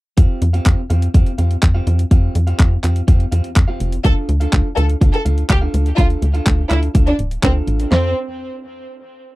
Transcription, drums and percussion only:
0.17 kick, closed hi-hat
0.42 closed hi-hat
0.54 closed hi-hat
0.66 kick, clap, closed hi-hat
0.90 closed hi-hat
1.02 closed hi-hat
1.14 kick, closed hi-hat
1.26 closed hi-hat
1.38 closed hi-hat
1.51 closed hi-hat
1.63 kick, clap, closed hi-hat
1.87 closed hi-hat
1.99 closed hi-hat
2.11 kick, closed hi-hat
2.35 closed hi-hat
2.47 closed hi-hat
2.60 kick, clap, closed hi-hat
2.84 clap, closed hi-hat
2.96 closed hi-hat
3.08 kick, closed hi-hat
3.20 closed hi-hat
3.32 closed hi-hat
3.44 closed hi-hat
3.56 kick, clap, closed hi-hat
3.80 closed hi-hat
3.92 closed hi-hat
4.05 kick, closed hi-hat
4.29 closed hi-hat
4.41 closed hi-hat
4.53 kick, clap, closed hi-hat
4.77 closed hi-hat
4.90 closed hi-hat
5.01 kick, closed hi-hat
5.14 closed hi-hat
5.26 closed hi-hat
5.38 closed hi-hat
5.50 kick, clap, closed hi-hat
5.74 closed hi-hat
5.86 closed hi-hat
5.98 kick, closed hi-hat
6.10 closed hi-hat
6.22 closed hi-hat
6.35 closed hi-hat
6.46 kick, clap, closed hi-hat
6.71 clap, closed hi-hat
6.83 closed hi-hat
6.95 kick, closed hi-hat
7.07 closed hi-hat
7.19 closed hi-hat
7.31 closed hi-hat
7.43 kick, clap, closed hi-hat
7.68 closed hi-hat
7.80 closed hi-hat
7.92 snare, clap

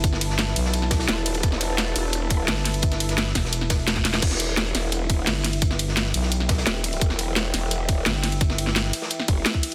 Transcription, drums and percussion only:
0.04 kick, closed hi-hat
0.13 snare
0.21 closed hi-hat, ride
0.30 snare
0.38 snare, closed hi-hat
0.48 snare
0.56 closed hi-hat, ride
0.65 snare
0.74 closed hi-hat
0.82 snare
0.91 kick, snare, closed hi-hat, ride
0.99 snare, closed hi-hat
1.08 snare, closed hi-hat
1.17 closed hi-hat
1.26 closed hi-hat, ride
1.34 closed hi-hat
1.43 kick, closed hi-hat
1.52 snare
1.61 closed hi-hat, ride
1.78 snare, closed hi-hat
1.87 closed hi-hat
1.96 closed hi-hat, ride
2.13 closed hi-hat
2.30 kick, closed hi-hat, ride
2.48 snare, closed hi-hat, open hi-hat
2.56 snare
2.65 snare, closed hi-hat, ride
2.74 closed hi-hat
2.82 kick, closed hi-hat
2.92 snare, closed hi-hat
3.00 closed hi-hat, ride
3.09 snare, closed hi-hat
3.18 snare, closed hi-hat
3.27 snare
3.35 kick, snare, closed hi-hat, ride
3.45 snare
3.53 closed hi-hat
3.61 snare
3.70 kick, snare, closed hi-hat, ride
3.79 closed hi-hat
3.88 snare, closed hi-hat
3.96 kick, snare, closed hi-hat
4.05 snare, closed hi-hat, ride
4.14 snare, closed hi-hat
4.22 kick, closed hi-hat, crash
4.31 snare
4.40 closed hi-hat, ride
4.57 snare, closed hi-hat
4.66 closed hi-hat
4.75 snare, closed hi-hat, ride
4.92 closed hi-hat
5.10 kick, closed hi-hat, ride
5.27 snare, closed hi-hat, open hi-hat
5.36 snare
5.44 snare, closed hi-hat, ride
5.53 closed hi-hat
5.62 kick, closed hi-hat
5.70 snare
5.79 closed hi-hat, ride
5.88 snare
5.97 snare, closed hi-hat
6.05 snare
6.14 closed hi-hat, ride
6.23 snare
6.32 closed hi-hat
6.40 snare
6.49 kick, snare, closed hi-hat, ride
6.58 snare, closed hi-hat
6.66 snare, closed hi-hat
6.76 closed hi-hat
6.84 closed hi-hat, ride
6.93 closed hi-hat
7.01 kick, closed hi-hat
7.10 snare
7.19 closed hi-hat, ride
7.36 snare, closed hi-hat
7.45 closed hi-hat
7.54 snare, closed hi-hat, ride
7.71 closed hi-hat
7.89 kick, closed hi-hat, ride
8.06 snare, closed hi-hat, open hi-hat
8.15 snare
8.24 snare, closed hi-hat, ride
8.32 closed hi-hat
8.41 kick, closed hi-hat
8.50 snare
8.58 closed hi-hat, ride
8.67 snare
8.76 snare, closed hi-hat
8.85 snare
8.93 closed hi-hat, ride
9.02 snare
9.10 closed hi-hat
9.20 snare
9.28 kick, closed hi-hat, ride
9.46 snare, closed hi-hat
9.54 kick
9.63 closed hi-hat, ride

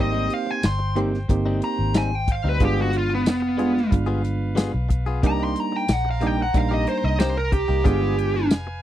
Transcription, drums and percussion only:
0.30 closed hi-hat
0.63 snare, closed hi-hat, tambourine
0.96 closed hi-hat
1.14 snare
1.29 kick, closed hi-hat
1.62 closed hi-hat
1.94 snare, closed hi-hat, tambourine
2.28 kick, closed hi-hat
2.60 kick, closed hi-hat
2.93 closed hi-hat
3.26 snare, closed hi-hat, tambourine
3.59 closed hi-hat
3.77 snare
3.92 kick, closed hi-hat
4.25 closed hi-hat
4.57 snare, closed hi-hat, tambourine
4.90 kick, closed hi-hat
5.23 kick, closed hi-hat
5.56 closed hi-hat
5.88 snare, closed hi-hat, tambourine
6.21 closed hi-hat
6.54 kick, closed hi-hat
6.87 closed hi-hat
7.20 snare, closed hi-hat, tambourine
7.52 kick, closed hi-hat
7.85 kick, closed hi-hat
8.19 closed hi-hat
8.51 snare, closed hi-hat, tambourine

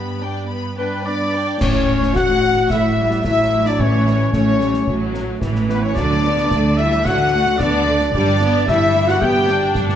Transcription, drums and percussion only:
1.61 concert bass drum, snare, crash
2.03 snare
2.16 concert bass drum, snare
2.57 snare
2.70 concert bass drum, snare
3.11 snare
3.24 concert bass drum, snare
3.66 snare
3.79 concert bass drum
4.07 snare
4.33 concert bass drum, snare
4.61 snare
4.74 snare
4.87 concert bass drum
5.14 snare
5.41 concert bass drum, snare
5.55 snare
5.69 snare
5.97 concert bass drum, snare, crash
6.38 snare
6.51 concert bass drum, snare
6.92 snare
7.05 concert bass drum, snare
7.46 snare
7.60 concert bass drum, snare
8.01 snare
8.14 concert bass drum
8.41 snare
8.68 concert bass drum, snare
8.95 snare
9.08 snare
9.21 concert bass drum
9.48 snare
9.75 concert bass drum, snare
9.89 snare

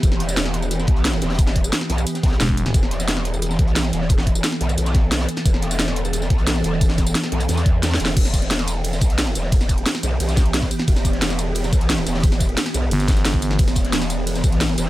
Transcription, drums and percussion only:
0.03 kick, closed hi-hat, tambourine
0.12 snare
0.20 snare, closed hi-hat
0.29 snare, closed hi-hat, tambourine
0.37 snare, closed hi-hat, tambourine
0.45 snare
0.54 closed hi-hat
0.62 closed hi-hat, tambourine
0.71 closed hi-hat, tambourine
0.79 snare, tambourine
0.87 kick, closed hi-hat
0.96 closed hi-hat
1.04 snare, closed hi-hat, open hi-hat, tambourine
1.13 snare
1.22 snare, closed hi-hat, tambourine
1.30 snare, closed hi-hat
1.34 snare, closed hi-hat
1.38 kick, closed hi-hat, tambourine
1.47 snare
1.55 kick, closed hi-hat
1.64 closed hi-hat, tambourine
1.73 snare, closed hi-hat, tambourine
1.81 snare
1.90 closed hi-hat
1.98 closed hi-hat, tambourine
2.07 closed hi-hat, tambourine
2.15 snare, closed hi-hat, tambourine
2.23 kick, snare, closed hi-hat
2.28 snare, closed hi-hat
2.32 snare, closed hi-hat
2.40 snare, closed hi-hat, tambourine
2.49 kick, snare
2.57 closed hi-hat, tambourine
2.66 snare
2.74 kick, closed hi-hat, tambourine
2.83 snare
2.91 snare, closed hi-hat
3.00 snare, closed hi-hat, tambourine
3.08 snare, closed hi-hat, tambourine
3.17 snare
3.25 closed hi-hat
3.34 closed hi-hat, tambourine
3.42 closed hi-hat, tambourine
3.50 snare, tambourine
3.59 kick, closed hi-hat
3.67 closed hi-hat
3.75 snare, closed hi-hat, open hi-hat, tambourine
3.85 snare
3.93 snare, closed hi-hat, tambourine
4.02 snare
4.09 kick, closed hi-hat, tambourine
4.18 snare
4.27 kick, closed hi-hat
4.35 closed hi-hat, tambourine
4.43 snare, closed hi-hat, tambourine
4.52 snare
4.61 closed hi-hat
4.69 closed hi-hat, tambourine
4.78 closed hi-hat, tambourine
4.86 snare, closed hi-hat, tambourine
4.94 kick, snare, closed hi-hat
5.12 snare, closed hi-hat, tambourine
5.19 snare, closed hi-hat
5.29 closed hi-hat, tambourine
5.37 snare, closed hi-hat
5.46 kick, closed hi-hat, tambourine
5.54 snare
5.62 snare, closed hi-hat
5.71 snare, closed hi-hat, tambourine
5.79 snare, closed hi-hat, tambourine
5.88 snare
5.96 closed hi-hat
6.05 closed hi-hat, tambourine
6.13 closed hi-hat, tambourine
6.22 snare, tambourine
6.30 kick, closed hi-hat
6.38 closed hi-hat
6.47 snare, closed hi-hat, open hi-hat, tambourine
6.56 snare
6.64 snare, closed hi-hat, tambourine
6.73 snare
6.81 kick, closed hi-hat, tambourine
6.90 snare
6.98 kick, snare, closed hi-hat, tambourine
7.06 snare, closed hi-hat, tambourine
7.15 snare, closed hi-hat, tambourine
7.23 snare, closed hi-hat
7.32 snare, closed hi-hat
7.40 closed hi-hat, tambourine
7.48 snare, closed hi-hat, tambourine
7.53 snare, closed hi-hat
7.57 snare, closed hi-hat, tambourine
7.66 kick, closed hi-hat
7.83 snare, closed hi-hat, tambourine
7.91 snare, closed hi-hat
7.94 snare
7.99 snare, closed hi-hat, tambourine
8.05 snare
8.08 snare, closed hi-hat
8.16 kick, closed hi-hat, crash, ride
8.25 snare, tambourine
8.34 kick, snare, closed hi-hat, tambourine
8.42 snare, closed hi-hat
8.50 snare, closed hi-hat, ride
8.58 snare, tambourine
8.68 closed hi-hat, tambourine
8.84 closed hi-hat, ride
8.93 snare, closed hi-hat, tambourine
9.01 kick, closed hi-hat, tambourine
9.10 closed hi-hat
9.18 snare, closed hi-hat, open hi-hat, ride
9.27 snare
9.35 snare, closed hi-hat, tambourine
9.44 snare
9.52 kick, closed hi-hat, ride
9.61 snare, tambourine
9.69 kick, closed hi-hat, tambourine
9.78 closed hi-hat
9.86 snare, closed hi-hat, ride
9.95 snare, tambourine
10.03 closed hi-hat, tambourine
10.20 closed hi-hat, ride
10.28 snare, closed hi-hat, tambourine
10.37 kick, snare, closed hi-hat, tambourine
10.46 closed hi-hat
10.54 snare, closed hi-hat, ride
10.62 kick, snare, closed hi-hat
10.71 closed hi-hat, tambourine
10.79 snare, closed hi-hat
10.88 kick, closed hi-hat, ride
10.96 snare, tambourine
11.05 kick, snare, closed hi-hat, tambourine
11.13 snare, closed hi-hat
11.22 snare, closed hi-hat, ride
11.30 snare, tambourine
11.38 closed hi-hat, tambourine
11.55 closed hi-hat, ride
11.64 snare, closed hi-hat, tambourine
11.73 kick, closed hi-hat, tambourine
11.81 closed hi-hat
11.90 snare, closed hi-hat, open hi-hat, ride
11.98 snare
12.06 snare, closed hi-hat, tambourine
12.15 snare, closed hi-hat
12.19 snare, closed hi-hat
12.24 kick, closed hi-hat, ride
12.32 snare, tambourine
12.40 kick, closed hi-hat, tambourine
12.49 closed hi-hat
12.57 snare, closed hi-hat, ride
12.66 snare, tambourine
12.74 closed hi-hat, tambourine
12.91 closed hi-hat, ride
13.00 snare, closed hi-hat, tambourine
13.08 kick, snare, closed hi-hat, tambourine
13.12 snare, closed hi-hat
13.17 snare, closed hi-hat
13.25 snare, closed hi-hat, ride
13.34 kick, snare
13.42 closed hi-hat, tambourine
13.51 snare
13.59 kick, closed hi-hat, ride
13.68 snare, tambourine
13.75 kick, snare, closed hi-hat, tambourine
13.85 snare, closed hi-hat
13.93 snare, closed hi-hat, ride
14.01 snare, tambourine
14.10 closed hi-hat, tambourine
14.27 closed hi-hat, ride
14.35 snare, closed hi-hat, tambourine
14.44 kick, closed hi-hat, tambourine
14.52 closed hi-hat
14.60 snare, closed hi-hat, open hi-hat, ride
14.69 snare
14.77 snare, closed hi-hat, tambourine
14.86 snare

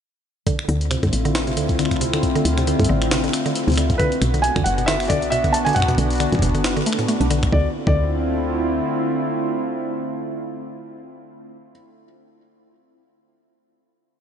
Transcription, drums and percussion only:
0.47 kick, closed hi-hat
0.59 finger snap
0.69 closed hi-hat
0.81 closed hi-hat
0.91 finger snap, closed hi-hat
1.03 kick, closed hi-hat
1.13 closed hi-hat
1.25 closed hi-hat
1.35 finger snap, snare, closed hi-hat
1.47 closed hi-hat
1.57 closed hi-hat
1.69 kick, closed hi-hat
1.79 finger snap, closed hi-hat
1.85 finger snap
1.91 finger snap, kick, closed hi-hat
1.96 finger snap
2.01 closed hi-hat
2.13 finger snap, closed hi-hat
2.23 kick, closed hi-hat
2.36 closed hi-hat
2.45 closed hi-hat
2.58 finger snap, closed hi-hat
2.67 closed hi-hat
2.80 kick, closed hi-hat
2.84 closed hi-hat
3.02 finger snap, closed hi-hat
3.11 snare, closed hi-hat
3.24 closed hi-hat
3.33 finger snap, closed hi-hat
3.46 closed hi-hat
3.55 closed hi-hat
3.68 closed hi-hat
3.70 closed hi-hat
3.72 closed hi-hat
3.74 closed hi-hat
3.76 finger snap, closed hi-hat
3.78 closed hi-hat
3.90 kick, closed hi-hat
4.00 kick, closed hi-hat
4.12 closed hi-hat
4.22 finger snap, closed hi-hat
4.34 closed hi-hat
4.44 closed hi-hat
4.56 finger snap, kick, closed hi-hat
4.66 closed hi-hat
4.78 closed hi-hat
4.88 snare, closed hi-hat
5.00 finger snap, closed hi-hat
5.03 closed hi-hat
5.05 closed hi-hat
5.08 kick, closed hi-hat
5.10 closed hi-hat
5.22 closed hi-hat
5.32 closed hi-hat
5.44 kick, closed hi-hat
5.54 closed hi-hat
5.66 closed hi-hat
5.69 closed hi-hat
5.73 kick, closed hi-hat
5.76 kick, closed hi-hat
5.80 finger snap, kick, closed hi-hat
5.83 closed hi-hat
5.88 kick, closed hi-hat
5.91 kick
5.95 kick, closed hi-hat
6.10 closed hi-hat
6.13 closed hi-hat
6.15 closed hi-hat
6.18 finger snap, closed hi-hat
6.20 closed hi-hat
6.23 closed hi-hat
6.26 closed hi-hat
6.29 kick, closed hi-hat
6.33 kick, closed hi-hat
6.39 kick
6.42 kick, closed hi-hat
6.46 kick
6.50 kick
6.55 closed hi-hat
6.64 finger snap, snare
6.77 closed hi-hat
6.86 closed hi-hat
6.93 finger snap
6.99 closed hi-hat
7.08 closed hi-hat
7.21 closed hi-hat
7.31 closed hi-hat
7.43 finger snap, kick, closed hi-hat
7.53 kick
7.87 kick

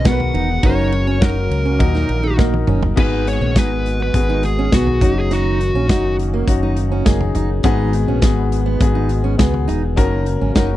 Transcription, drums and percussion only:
0.05 kick, snare, ride
0.20 floor tom
0.35 ride
0.63 kick, ride
0.92 ride
1.22 kick, snare, ride
1.51 ride
1.80 kick, ride
1.95 snare
2.09 ride
2.39 kick, snare
2.54 high tom
2.67 mid tom
2.83 floor tom
2.97 kick, crash
3.27 closed hi-hat
3.56 kick, snare, closed hi-hat
3.86 closed hi-hat
4.14 kick, closed hi-hat
4.43 closed hi-hat
4.72 kick, snare, closed hi-hat
4.87 floor tom
5.01 kick, closed hi-hat, floor tom
5.31 closed hi-hat
5.61 closed hi-hat
5.89 kick, snare, closed hi-hat
6.19 closed hi-hat
6.48 kick, closed hi-hat
6.77 closed hi-hat
7.06 kick, snare, closed hi-hat
7.21 floor tom
7.35 closed hi-hat, floor tom
7.63 kick, closed hi-hat
7.93 closed hi-hat
8.22 kick, snare, closed hi-hat
8.52 closed hi-hat
8.80 kick, closed hi-hat
9.09 closed hi-hat
9.39 kick, snare, closed hi-hat
9.54 floor tom
9.69 closed hi-hat, floor tom
9.97 kick, closed hi-hat
10.26 closed hi-hat
10.55 kick, snare, closed hi-hat

